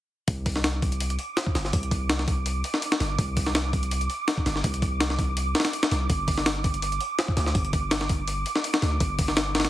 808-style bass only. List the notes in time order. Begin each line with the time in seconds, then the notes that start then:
0.28 C2
1.55 G1
1.73 C2
3.00 G1
3.19 C2
4.46 G1
4.64 C2
5.91 C2
6.10 G1
7.37 D2
7.55 G1
8.82 D2
9.00 G1